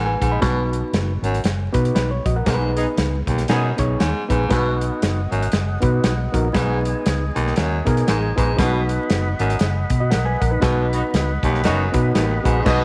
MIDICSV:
0, 0, Header, 1, 8, 480
1, 0, Start_track
1, 0, Key_signature, 5, "major"
1, 0, Tempo, 509771
1, 400, Time_signature, 4, 2, 24, 8
1, 12094, End_track
2, 0, Start_track
2, 0, Title_t, "Tonewheel organ"
2, 0, Program_c, 0, 16
2, 4239, Note_on_c, 0, 75, 64
2, 4244, Note_on_c, 0, 78, 54
2, 6144, Note_off_c, 0, 78, 0
2, 6152, Note_on_c, 0, 80, 60
2, 8060, Note_off_c, 0, 80, 0
2, 8079, Note_on_c, 0, 83, 69
2, 8084, Note_on_c, 0, 78, 64
2, 9983, Note_off_c, 0, 83, 0
2, 11885, Note_off_c, 0, 75, 0
2, 11885, Note_off_c, 0, 78, 0
2, 11925, Note_on_c, 0, 75, 61
2, 11926, Note_on_c, 0, 78, 57
2, 11926, Note_on_c, 0, 83, 74
2, 12094, Note_off_c, 0, 75, 0
2, 12094, Note_off_c, 0, 78, 0
2, 12094, Note_off_c, 0, 83, 0
2, 12094, End_track
3, 0, Start_track
3, 0, Title_t, "Reed electric piano"
3, 0, Program_c, 1, 4
3, 55, Note_on_c, 1, 80, 67
3, 64, Note_on_c, 1, 71, 58
3, 286, Note_off_c, 1, 80, 0
3, 291, Note_off_c, 1, 71, 0
3, 296, Note_on_c, 1, 83, 61
3, 303, Note_on_c, 1, 75, 50
3, 381, Note_on_c, 1, 59, 79
3, 389, Note_on_c, 1, 63, 72
3, 394, Note_on_c, 1, 66, 72
3, 397, Note_on_c, 1, 71, 90
3, 527, Note_off_c, 1, 83, 0
3, 530, Note_off_c, 1, 75, 0
3, 1046, Note_off_c, 1, 59, 0
3, 1050, Note_off_c, 1, 63, 0
3, 1052, Note_off_c, 1, 66, 0
3, 1054, Note_off_c, 1, 71, 0
3, 1626, Note_on_c, 1, 59, 80
3, 1628, Note_on_c, 1, 63, 69
3, 1632, Note_on_c, 1, 66, 74
3, 1641, Note_on_c, 1, 71, 88
3, 1826, Note_off_c, 1, 71, 0
3, 1832, Note_off_c, 1, 63, 0
3, 1834, Note_off_c, 1, 66, 0
3, 1838, Note_on_c, 1, 71, 63
3, 1844, Note_on_c, 1, 63, 51
3, 1919, Note_off_c, 1, 59, 0
3, 1973, Note_off_c, 1, 71, 0
3, 1977, Note_off_c, 1, 63, 0
3, 1984, Note_on_c, 1, 73, 66
3, 2118, Note_off_c, 1, 73, 0
3, 2124, Note_on_c, 1, 75, 64
3, 2125, Note_on_c, 1, 66, 54
3, 2217, Note_off_c, 1, 75, 0
3, 2218, Note_off_c, 1, 66, 0
3, 2222, Note_on_c, 1, 78, 58
3, 2225, Note_on_c, 1, 70, 50
3, 2317, Note_on_c, 1, 59, 74
3, 2319, Note_on_c, 1, 63, 73
3, 2321, Note_off_c, 1, 70, 0
3, 2329, Note_on_c, 1, 68, 70
3, 2332, Note_on_c, 1, 70, 73
3, 2392, Note_on_c, 1, 71, 89
3, 2394, Note_off_c, 1, 70, 0
3, 2450, Note_off_c, 1, 78, 0
3, 2973, Note_off_c, 1, 59, 0
3, 2975, Note_off_c, 1, 63, 0
3, 2980, Note_off_c, 1, 68, 0
3, 3011, Note_off_c, 1, 71, 0
3, 3549, Note_on_c, 1, 59, 80
3, 3560, Note_on_c, 1, 63, 70
3, 3561, Note_on_c, 1, 68, 68
3, 3573, Note_on_c, 1, 73, 91
3, 3840, Note_off_c, 1, 59, 0
3, 3845, Note_off_c, 1, 63, 0
3, 3846, Note_off_c, 1, 68, 0
3, 3852, Note_off_c, 1, 73, 0
3, 4037, Note_on_c, 1, 59, 75
3, 4043, Note_on_c, 1, 63, 60
3, 4052, Note_on_c, 1, 68, 63
3, 4054, Note_on_c, 1, 71, 75
3, 4169, Note_off_c, 1, 59, 0
3, 4172, Note_off_c, 1, 63, 0
3, 4176, Note_off_c, 1, 68, 0
3, 4177, Note_off_c, 1, 71, 0
3, 4227, Note_on_c, 1, 59, 82
3, 4232, Note_on_c, 1, 63, 74
3, 4242, Note_on_c, 1, 66, 72
3, 4243, Note_on_c, 1, 71, 89
3, 4889, Note_off_c, 1, 59, 0
3, 4892, Note_off_c, 1, 63, 0
3, 4896, Note_off_c, 1, 66, 0
3, 4897, Note_off_c, 1, 71, 0
3, 5466, Note_on_c, 1, 59, 74
3, 5475, Note_on_c, 1, 63, 70
3, 5480, Note_on_c, 1, 66, 74
3, 5486, Note_on_c, 1, 71, 88
3, 5759, Note_off_c, 1, 59, 0
3, 5764, Note_off_c, 1, 63, 0
3, 5766, Note_off_c, 1, 66, 0
3, 5769, Note_off_c, 1, 71, 0
3, 5954, Note_on_c, 1, 59, 71
3, 5963, Note_on_c, 1, 63, 67
3, 5968, Note_on_c, 1, 66, 68
3, 5975, Note_on_c, 1, 70, 75
3, 6088, Note_off_c, 1, 59, 0
3, 6092, Note_off_c, 1, 63, 0
3, 6095, Note_off_c, 1, 66, 0
3, 6099, Note_off_c, 1, 70, 0
3, 6146, Note_on_c, 1, 59, 78
3, 6152, Note_on_c, 1, 63, 72
3, 6161, Note_on_c, 1, 68, 78
3, 6166, Note_on_c, 1, 71, 92
3, 6810, Note_off_c, 1, 59, 0
3, 6812, Note_off_c, 1, 63, 0
3, 6817, Note_off_c, 1, 68, 0
3, 6819, Note_off_c, 1, 71, 0
3, 7393, Note_on_c, 1, 59, 85
3, 7399, Note_on_c, 1, 63, 68
3, 7403, Note_on_c, 1, 68, 78
3, 7407, Note_on_c, 1, 70, 91
3, 7684, Note_off_c, 1, 59, 0
3, 7687, Note_off_c, 1, 63, 0
3, 7689, Note_off_c, 1, 68, 0
3, 7691, Note_off_c, 1, 70, 0
3, 7872, Note_on_c, 1, 59, 71
3, 7875, Note_on_c, 1, 63, 68
3, 7880, Note_on_c, 1, 68, 68
3, 7887, Note_on_c, 1, 71, 79
3, 8008, Note_off_c, 1, 59, 0
3, 8010, Note_off_c, 1, 63, 0
3, 8012, Note_off_c, 1, 68, 0
3, 8016, Note_off_c, 1, 71, 0
3, 8064, Note_on_c, 1, 59, 80
3, 8067, Note_on_c, 1, 61, 57
3, 8077, Note_on_c, 1, 66, 69
3, 8085, Note_on_c, 1, 71, 84
3, 8130, Note_on_c, 1, 63, 76
3, 8143, Note_off_c, 1, 61, 0
3, 8730, Note_off_c, 1, 59, 0
3, 8736, Note_off_c, 1, 66, 0
3, 8740, Note_off_c, 1, 71, 0
3, 8763, Note_off_c, 1, 63, 0
3, 9419, Note_on_c, 1, 75, 63
3, 9424, Note_on_c, 1, 66, 51
3, 9512, Note_on_c, 1, 78, 63
3, 9514, Note_on_c, 1, 70, 54
3, 9516, Note_off_c, 1, 75, 0
3, 9519, Note_off_c, 1, 66, 0
3, 9653, Note_off_c, 1, 78, 0
3, 9654, Note_off_c, 1, 70, 0
3, 9655, Note_on_c, 1, 80, 70
3, 9656, Note_on_c, 1, 71, 53
3, 9795, Note_off_c, 1, 80, 0
3, 9796, Note_off_c, 1, 71, 0
3, 9796, Note_on_c, 1, 78, 62
3, 9807, Note_on_c, 1, 70, 57
3, 9895, Note_off_c, 1, 78, 0
3, 9895, Note_on_c, 1, 71, 58
3, 9901, Note_off_c, 1, 70, 0
3, 9902, Note_on_c, 1, 63, 49
3, 9980, Note_off_c, 1, 63, 0
3, 9984, Note_on_c, 1, 59, 73
3, 9991, Note_off_c, 1, 71, 0
3, 9992, Note_on_c, 1, 63, 69
3, 9994, Note_on_c, 1, 66, 72
3, 10002, Note_on_c, 1, 71, 94
3, 10649, Note_off_c, 1, 59, 0
3, 10653, Note_off_c, 1, 63, 0
3, 10655, Note_off_c, 1, 66, 0
3, 10658, Note_off_c, 1, 71, 0
3, 11224, Note_on_c, 1, 59, 74
3, 11233, Note_on_c, 1, 63, 68
3, 11239, Note_on_c, 1, 66, 74
3, 11241, Note_on_c, 1, 71, 86
3, 11519, Note_off_c, 1, 59, 0
3, 11524, Note_off_c, 1, 63, 0
3, 11527, Note_off_c, 1, 66, 0
3, 11528, Note_off_c, 1, 71, 0
3, 11710, Note_on_c, 1, 59, 67
3, 11712, Note_on_c, 1, 63, 66
3, 11717, Note_on_c, 1, 66, 65
3, 11727, Note_on_c, 1, 71, 76
3, 11847, Note_off_c, 1, 59, 0
3, 11848, Note_off_c, 1, 63, 0
3, 11850, Note_off_c, 1, 66, 0
3, 11855, Note_off_c, 1, 71, 0
3, 11903, Note_on_c, 1, 59, 81
3, 11911, Note_on_c, 1, 63, 74
3, 11916, Note_on_c, 1, 66, 74
3, 11923, Note_on_c, 1, 71, 90
3, 12094, Note_off_c, 1, 59, 0
3, 12094, Note_off_c, 1, 63, 0
3, 12094, Note_off_c, 1, 66, 0
3, 12094, Note_off_c, 1, 71, 0
3, 12094, End_track
4, 0, Start_track
4, 0, Title_t, "String section"
4, 0, Program_c, 2, 48
4, 11921, Note_on_c, 2, 75, 93
4, 11922, Note_on_c, 2, 59, 78
4, 11922, Note_on_c, 2, 66, 79
4, 12094, Note_off_c, 2, 59, 0
4, 12094, Note_off_c, 2, 66, 0
4, 12094, Note_off_c, 2, 75, 0
4, 12094, End_track
5, 0, Start_track
5, 0, Title_t, "Horn section"
5, 0, Program_c, 3, 61
5, 2604, Note_on_c, 3, 59, 75
5, 2604, Note_on_c, 3, 63, 77
5, 2604, Note_on_c, 3, 68, 87
5, 2687, Note_off_c, 3, 59, 0
5, 2687, Note_off_c, 3, 68, 0
5, 2688, Note_off_c, 3, 63, 0
5, 3288, Note_on_c, 3, 59, 78
5, 3288, Note_on_c, 3, 68, 90
5, 3290, Note_on_c, 3, 63, 80
5, 3466, Note_off_c, 3, 59, 0
5, 3466, Note_off_c, 3, 68, 0
5, 3468, Note_off_c, 3, 63, 0
5, 10288, Note_on_c, 3, 63, 81
5, 10290, Note_on_c, 3, 59, 79
5, 10291, Note_on_c, 3, 66, 86
5, 10372, Note_off_c, 3, 63, 0
5, 10373, Note_off_c, 3, 59, 0
5, 10373, Note_off_c, 3, 66, 0
5, 10965, Note_on_c, 3, 63, 79
5, 10966, Note_on_c, 3, 59, 79
5, 10971, Note_on_c, 3, 66, 93
5, 11145, Note_off_c, 3, 63, 0
5, 11146, Note_off_c, 3, 59, 0
5, 11149, Note_off_c, 3, 66, 0
5, 11929, Note_on_c, 3, 63, 72
5, 11931, Note_on_c, 3, 59, 72
5, 11931, Note_on_c, 3, 66, 85
5, 12094, Note_off_c, 3, 59, 0
5, 12094, Note_off_c, 3, 63, 0
5, 12094, Note_off_c, 3, 66, 0
5, 12094, End_track
6, 0, Start_track
6, 0, Title_t, "Baritone saxophone"
6, 0, Program_c, 4, 67
6, 0, Note_on_c, 4, 44, 73
6, 144, Note_off_c, 4, 44, 0
6, 198, Note_on_c, 4, 44, 74
6, 358, Note_off_c, 4, 44, 0
6, 392, Note_on_c, 4, 47, 86
6, 622, Note_off_c, 4, 47, 0
6, 1160, Note_on_c, 4, 42, 70
6, 1318, Note_off_c, 4, 42, 0
6, 2319, Note_on_c, 4, 44, 70
6, 2546, Note_off_c, 4, 44, 0
6, 3081, Note_on_c, 4, 39, 78
6, 3239, Note_off_c, 4, 39, 0
6, 3286, Note_on_c, 4, 42, 79
6, 3510, Note_off_c, 4, 42, 0
6, 3762, Note_on_c, 4, 44, 68
6, 3988, Note_off_c, 4, 44, 0
6, 4049, Note_on_c, 4, 44, 73
6, 4204, Note_off_c, 4, 44, 0
6, 4251, Note_on_c, 4, 47, 84
6, 4473, Note_off_c, 4, 47, 0
6, 5003, Note_on_c, 4, 42, 75
6, 5161, Note_off_c, 4, 42, 0
6, 6161, Note_on_c, 4, 44, 71
6, 6389, Note_off_c, 4, 44, 0
6, 6923, Note_on_c, 4, 39, 81
6, 7082, Note_off_c, 4, 39, 0
6, 7122, Note_on_c, 4, 42, 76
6, 7349, Note_off_c, 4, 42, 0
6, 7605, Note_on_c, 4, 44, 76
6, 7831, Note_off_c, 4, 44, 0
6, 7889, Note_on_c, 4, 44, 75
6, 8045, Note_off_c, 4, 44, 0
6, 8086, Note_on_c, 4, 47, 88
6, 8312, Note_off_c, 4, 47, 0
6, 8850, Note_on_c, 4, 42, 70
6, 9006, Note_off_c, 4, 42, 0
6, 9998, Note_on_c, 4, 47, 76
6, 10228, Note_off_c, 4, 47, 0
6, 10766, Note_on_c, 4, 39, 79
6, 10924, Note_off_c, 4, 39, 0
6, 10955, Note_on_c, 4, 42, 77
6, 11186, Note_off_c, 4, 42, 0
6, 11436, Note_on_c, 4, 39, 62
6, 11666, Note_off_c, 4, 39, 0
6, 11712, Note_on_c, 4, 44, 74
6, 11875, Note_off_c, 4, 44, 0
6, 11914, Note_on_c, 4, 47, 85
6, 12094, Note_off_c, 4, 47, 0
6, 12094, End_track
7, 0, Start_track
7, 0, Title_t, "Fingered electric bass"
7, 0, Program_c, 5, 33
7, 0, Note_on_c, 5, 33, 86
7, 136, Note_off_c, 5, 33, 0
7, 203, Note_on_c, 5, 34, 81
7, 352, Note_off_c, 5, 34, 0
7, 400, Note_on_c, 5, 35, 98
7, 763, Note_off_c, 5, 35, 0
7, 877, Note_on_c, 5, 30, 88
7, 1093, Note_off_c, 5, 30, 0
7, 1151, Note_on_c, 5, 32, 77
7, 1305, Note_off_c, 5, 32, 0
7, 1357, Note_on_c, 5, 30, 84
7, 1573, Note_off_c, 5, 30, 0
7, 1645, Note_on_c, 5, 47, 92
7, 1793, Note_off_c, 5, 47, 0
7, 1840, Note_on_c, 5, 35, 81
7, 2054, Note_off_c, 5, 35, 0
7, 2124, Note_on_c, 5, 34, 93
7, 2273, Note_off_c, 5, 34, 0
7, 2317, Note_on_c, 5, 35, 92
7, 2681, Note_off_c, 5, 35, 0
7, 2802, Note_on_c, 5, 37, 88
7, 3016, Note_off_c, 5, 37, 0
7, 3079, Note_on_c, 5, 35, 79
7, 3229, Note_off_c, 5, 35, 0
7, 3285, Note_on_c, 5, 47, 85
7, 3498, Note_off_c, 5, 47, 0
7, 3564, Note_on_c, 5, 35, 91
7, 3713, Note_off_c, 5, 35, 0
7, 3773, Note_on_c, 5, 39, 80
7, 3875, Note_off_c, 5, 39, 0
7, 4053, Note_on_c, 5, 34, 77
7, 4198, Note_off_c, 5, 34, 0
7, 4245, Note_on_c, 5, 35, 96
7, 4606, Note_off_c, 5, 35, 0
7, 4731, Note_on_c, 5, 30, 87
7, 4942, Note_off_c, 5, 30, 0
7, 5008, Note_on_c, 5, 32, 77
7, 5155, Note_off_c, 5, 32, 0
7, 5205, Note_on_c, 5, 30, 82
7, 5418, Note_off_c, 5, 30, 0
7, 5490, Note_on_c, 5, 47, 93
7, 5636, Note_off_c, 5, 47, 0
7, 5687, Note_on_c, 5, 35, 88
7, 5899, Note_off_c, 5, 35, 0
7, 5967, Note_on_c, 5, 34, 84
7, 6115, Note_off_c, 5, 34, 0
7, 6161, Note_on_c, 5, 35, 98
7, 6525, Note_off_c, 5, 35, 0
7, 6652, Note_on_c, 5, 37, 81
7, 6863, Note_off_c, 5, 37, 0
7, 6930, Note_on_c, 5, 35, 70
7, 7077, Note_off_c, 5, 35, 0
7, 7133, Note_on_c, 5, 39, 89
7, 7344, Note_off_c, 5, 39, 0
7, 7410, Note_on_c, 5, 47, 101
7, 7557, Note_off_c, 5, 47, 0
7, 7613, Note_on_c, 5, 33, 81
7, 7824, Note_off_c, 5, 33, 0
7, 7890, Note_on_c, 5, 34, 83
7, 8037, Note_off_c, 5, 34, 0
7, 8084, Note_on_c, 5, 35, 99
7, 8447, Note_off_c, 5, 35, 0
7, 8570, Note_on_c, 5, 30, 81
7, 8783, Note_off_c, 5, 30, 0
7, 8849, Note_on_c, 5, 32, 80
7, 8997, Note_off_c, 5, 32, 0
7, 9044, Note_on_c, 5, 30, 91
7, 9259, Note_off_c, 5, 30, 0
7, 9325, Note_on_c, 5, 47, 83
7, 9533, Note_on_c, 5, 35, 85
7, 9547, Note_off_c, 5, 47, 0
7, 9745, Note_off_c, 5, 35, 0
7, 9808, Note_on_c, 5, 34, 88
7, 9957, Note_off_c, 5, 34, 0
7, 10004, Note_on_c, 5, 35, 98
7, 10367, Note_off_c, 5, 35, 0
7, 10485, Note_on_c, 5, 37, 76
7, 10699, Note_off_c, 5, 37, 0
7, 10762, Note_on_c, 5, 35, 72
7, 10972, Note_on_c, 5, 30, 84
7, 10986, Note_off_c, 5, 35, 0
7, 11183, Note_off_c, 5, 30, 0
7, 11244, Note_on_c, 5, 47, 93
7, 11394, Note_off_c, 5, 47, 0
7, 11446, Note_on_c, 5, 33, 75
7, 11659, Note_off_c, 5, 33, 0
7, 11725, Note_on_c, 5, 34, 71
7, 11874, Note_off_c, 5, 34, 0
7, 11922, Note_on_c, 5, 35, 99
7, 12094, Note_off_c, 5, 35, 0
7, 12094, End_track
8, 0, Start_track
8, 0, Title_t, "Drums"
8, 203, Note_on_c, 9, 36, 78
8, 206, Note_on_c, 9, 42, 68
8, 297, Note_off_c, 9, 36, 0
8, 301, Note_off_c, 9, 42, 0
8, 396, Note_on_c, 9, 42, 80
8, 398, Note_on_c, 9, 36, 104
8, 401, Note_on_c, 9, 38, 93
8, 491, Note_off_c, 9, 42, 0
8, 492, Note_off_c, 9, 36, 0
8, 496, Note_off_c, 9, 38, 0
8, 689, Note_on_c, 9, 42, 57
8, 783, Note_off_c, 9, 42, 0
8, 881, Note_on_c, 9, 42, 75
8, 888, Note_on_c, 9, 38, 102
8, 975, Note_off_c, 9, 42, 0
8, 982, Note_off_c, 9, 38, 0
8, 1166, Note_on_c, 9, 42, 55
8, 1260, Note_off_c, 9, 42, 0
8, 1266, Note_on_c, 9, 42, 50
8, 1354, Note_off_c, 9, 42, 0
8, 1354, Note_on_c, 9, 42, 73
8, 1369, Note_on_c, 9, 38, 102
8, 1449, Note_off_c, 9, 42, 0
8, 1464, Note_off_c, 9, 38, 0
8, 1638, Note_on_c, 9, 42, 69
8, 1643, Note_on_c, 9, 36, 88
8, 1732, Note_off_c, 9, 42, 0
8, 1737, Note_off_c, 9, 36, 0
8, 1742, Note_on_c, 9, 42, 46
8, 1837, Note_off_c, 9, 42, 0
8, 1842, Note_on_c, 9, 42, 82
8, 1845, Note_on_c, 9, 38, 98
8, 1936, Note_off_c, 9, 42, 0
8, 1939, Note_off_c, 9, 38, 0
8, 2125, Note_on_c, 9, 36, 89
8, 2128, Note_on_c, 9, 42, 70
8, 2219, Note_off_c, 9, 36, 0
8, 2222, Note_off_c, 9, 42, 0
8, 2318, Note_on_c, 9, 42, 81
8, 2320, Note_on_c, 9, 36, 100
8, 2323, Note_on_c, 9, 38, 90
8, 2413, Note_off_c, 9, 42, 0
8, 2414, Note_off_c, 9, 36, 0
8, 2418, Note_off_c, 9, 38, 0
8, 2605, Note_on_c, 9, 42, 60
8, 2699, Note_off_c, 9, 42, 0
8, 2801, Note_on_c, 9, 42, 81
8, 2809, Note_on_c, 9, 38, 99
8, 2895, Note_off_c, 9, 42, 0
8, 2903, Note_off_c, 9, 38, 0
8, 3081, Note_on_c, 9, 36, 78
8, 3087, Note_on_c, 9, 42, 54
8, 3175, Note_off_c, 9, 36, 0
8, 3181, Note_off_c, 9, 42, 0
8, 3185, Note_on_c, 9, 42, 49
8, 3188, Note_on_c, 9, 38, 30
8, 3277, Note_off_c, 9, 42, 0
8, 3277, Note_on_c, 9, 42, 74
8, 3282, Note_off_c, 9, 38, 0
8, 3292, Note_on_c, 9, 38, 102
8, 3371, Note_off_c, 9, 42, 0
8, 3386, Note_off_c, 9, 38, 0
8, 3560, Note_on_c, 9, 42, 69
8, 3567, Note_on_c, 9, 36, 91
8, 3654, Note_off_c, 9, 42, 0
8, 3661, Note_off_c, 9, 36, 0
8, 3767, Note_on_c, 9, 42, 74
8, 3770, Note_on_c, 9, 38, 101
8, 3861, Note_off_c, 9, 42, 0
8, 3864, Note_off_c, 9, 38, 0
8, 4049, Note_on_c, 9, 36, 85
8, 4052, Note_on_c, 9, 42, 65
8, 4143, Note_off_c, 9, 36, 0
8, 4147, Note_off_c, 9, 42, 0
8, 4241, Note_on_c, 9, 42, 83
8, 4244, Note_on_c, 9, 36, 97
8, 4246, Note_on_c, 9, 38, 95
8, 4335, Note_off_c, 9, 42, 0
8, 4338, Note_off_c, 9, 36, 0
8, 4340, Note_off_c, 9, 38, 0
8, 4532, Note_on_c, 9, 42, 58
8, 4626, Note_off_c, 9, 42, 0
8, 4729, Note_on_c, 9, 42, 85
8, 4736, Note_on_c, 9, 38, 96
8, 4823, Note_off_c, 9, 42, 0
8, 4830, Note_off_c, 9, 38, 0
8, 5011, Note_on_c, 9, 42, 50
8, 5105, Note_off_c, 9, 42, 0
8, 5108, Note_on_c, 9, 42, 52
8, 5195, Note_off_c, 9, 42, 0
8, 5195, Note_on_c, 9, 42, 76
8, 5209, Note_on_c, 9, 38, 96
8, 5289, Note_off_c, 9, 42, 0
8, 5303, Note_off_c, 9, 38, 0
8, 5478, Note_on_c, 9, 42, 68
8, 5486, Note_on_c, 9, 36, 86
8, 5572, Note_off_c, 9, 42, 0
8, 5580, Note_off_c, 9, 36, 0
8, 5685, Note_on_c, 9, 42, 81
8, 5687, Note_on_c, 9, 38, 101
8, 5779, Note_off_c, 9, 42, 0
8, 5782, Note_off_c, 9, 38, 0
8, 5969, Note_on_c, 9, 36, 85
8, 5973, Note_on_c, 9, 42, 69
8, 6063, Note_off_c, 9, 36, 0
8, 6067, Note_off_c, 9, 42, 0
8, 6162, Note_on_c, 9, 42, 84
8, 6163, Note_on_c, 9, 36, 109
8, 6167, Note_on_c, 9, 38, 101
8, 6257, Note_off_c, 9, 36, 0
8, 6257, Note_off_c, 9, 42, 0
8, 6262, Note_off_c, 9, 38, 0
8, 6453, Note_on_c, 9, 42, 56
8, 6547, Note_off_c, 9, 42, 0
8, 6645, Note_on_c, 9, 42, 80
8, 6652, Note_on_c, 9, 38, 103
8, 6739, Note_off_c, 9, 42, 0
8, 6746, Note_off_c, 9, 38, 0
8, 6930, Note_on_c, 9, 42, 53
8, 7024, Note_off_c, 9, 42, 0
8, 7034, Note_on_c, 9, 38, 32
8, 7119, Note_on_c, 9, 42, 77
8, 7128, Note_off_c, 9, 38, 0
8, 7133, Note_on_c, 9, 38, 100
8, 7213, Note_off_c, 9, 42, 0
8, 7228, Note_off_c, 9, 38, 0
8, 7406, Note_on_c, 9, 42, 65
8, 7408, Note_on_c, 9, 36, 90
8, 7500, Note_off_c, 9, 42, 0
8, 7502, Note_off_c, 9, 36, 0
8, 7506, Note_on_c, 9, 42, 44
8, 7600, Note_off_c, 9, 42, 0
8, 7606, Note_on_c, 9, 42, 88
8, 7609, Note_on_c, 9, 38, 103
8, 7700, Note_off_c, 9, 42, 0
8, 7703, Note_off_c, 9, 38, 0
8, 7888, Note_on_c, 9, 36, 88
8, 7893, Note_on_c, 9, 42, 69
8, 7982, Note_off_c, 9, 36, 0
8, 7987, Note_off_c, 9, 42, 0
8, 8084, Note_on_c, 9, 36, 110
8, 8085, Note_on_c, 9, 42, 83
8, 8090, Note_on_c, 9, 38, 101
8, 8178, Note_off_c, 9, 36, 0
8, 8179, Note_off_c, 9, 42, 0
8, 8184, Note_off_c, 9, 38, 0
8, 8372, Note_on_c, 9, 42, 55
8, 8466, Note_off_c, 9, 42, 0
8, 8565, Note_on_c, 9, 42, 80
8, 8572, Note_on_c, 9, 38, 98
8, 8659, Note_off_c, 9, 42, 0
8, 8666, Note_off_c, 9, 38, 0
8, 8846, Note_on_c, 9, 42, 52
8, 8940, Note_off_c, 9, 42, 0
8, 8944, Note_on_c, 9, 42, 48
8, 9032, Note_off_c, 9, 42, 0
8, 9032, Note_on_c, 9, 42, 75
8, 9047, Note_on_c, 9, 38, 108
8, 9126, Note_off_c, 9, 42, 0
8, 9141, Note_off_c, 9, 38, 0
8, 9320, Note_on_c, 9, 42, 66
8, 9325, Note_on_c, 9, 36, 90
8, 9414, Note_off_c, 9, 42, 0
8, 9419, Note_off_c, 9, 36, 0
8, 9524, Note_on_c, 9, 42, 79
8, 9527, Note_on_c, 9, 38, 100
8, 9619, Note_off_c, 9, 42, 0
8, 9621, Note_off_c, 9, 38, 0
8, 9808, Note_on_c, 9, 36, 88
8, 9811, Note_on_c, 9, 42, 67
8, 9902, Note_off_c, 9, 36, 0
8, 9905, Note_off_c, 9, 42, 0
8, 10000, Note_on_c, 9, 42, 74
8, 10003, Note_on_c, 9, 36, 100
8, 10005, Note_on_c, 9, 38, 96
8, 10094, Note_off_c, 9, 42, 0
8, 10097, Note_off_c, 9, 36, 0
8, 10099, Note_off_c, 9, 38, 0
8, 10291, Note_on_c, 9, 42, 63
8, 10385, Note_off_c, 9, 42, 0
8, 10488, Note_on_c, 9, 42, 85
8, 10495, Note_on_c, 9, 38, 96
8, 10582, Note_off_c, 9, 42, 0
8, 10589, Note_off_c, 9, 38, 0
8, 10763, Note_on_c, 9, 36, 77
8, 10772, Note_on_c, 9, 42, 54
8, 10857, Note_off_c, 9, 36, 0
8, 10866, Note_off_c, 9, 42, 0
8, 10870, Note_on_c, 9, 38, 32
8, 10957, Note_on_c, 9, 42, 77
8, 10964, Note_off_c, 9, 38, 0
8, 10972, Note_on_c, 9, 38, 99
8, 11051, Note_off_c, 9, 42, 0
8, 11066, Note_off_c, 9, 38, 0
8, 11240, Note_on_c, 9, 42, 68
8, 11246, Note_on_c, 9, 36, 93
8, 11334, Note_off_c, 9, 42, 0
8, 11340, Note_off_c, 9, 36, 0
8, 11442, Note_on_c, 9, 42, 79
8, 11444, Note_on_c, 9, 38, 97
8, 11536, Note_off_c, 9, 42, 0
8, 11539, Note_off_c, 9, 38, 0
8, 11726, Note_on_c, 9, 36, 90
8, 11732, Note_on_c, 9, 42, 65
8, 11820, Note_off_c, 9, 36, 0
8, 11826, Note_off_c, 9, 42, 0
8, 11919, Note_on_c, 9, 49, 80
8, 11920, Note_on_c, 9, 36, 101
8, 11924, Note_on_c, 9, 38, 99
8, 12014, Note_off_c, 9, 36, 0
8, 12014, Note_off_c, 9, 49, 0
8, 12018, Note_off_c, 9, 38, 0
8, 12094, End_track
0, 0, End_of_file